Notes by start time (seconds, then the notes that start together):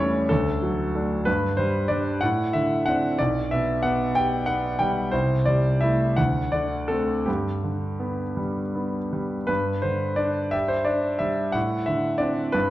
Already playing: E2 G3 C#5 D5 E5
0.00 A3 C#4
0.29 D2 A4
0.62 F#3
0.95 A3 D4
1.25 G2 B4
1.57 G3 C5
1.88 G3 D4 D5
2.21 A2 F#5
2.53 D3 E5
2.86 C4 D4 F#5
3.19 B1 D5
3.51 B2 E5
3.83 B3 F#5
4.15 G4 G5
4.46 B3 F#5
4.79 G3 G5
5.12 C2 C5
5.46 G3 D5
5.81 A3 E4 E5
6.17 D2 F#5
6.52 D3 D5
6.88 A3 C4 A4
7.26 G2 G4
7.63 D3
8.00 B3
8.37 G3
8.75 B3
9.13 G3
9.47 G2 B4
9.82 D3 C5
10.16 D4 D5
10.51 G4 E5
10.68 C5
10.85 D4 D5
11.19 G3 E5
11.52 A2 F#5
11.86 D3 E5
12.18 C4 D4 D5
12.52 G2 B4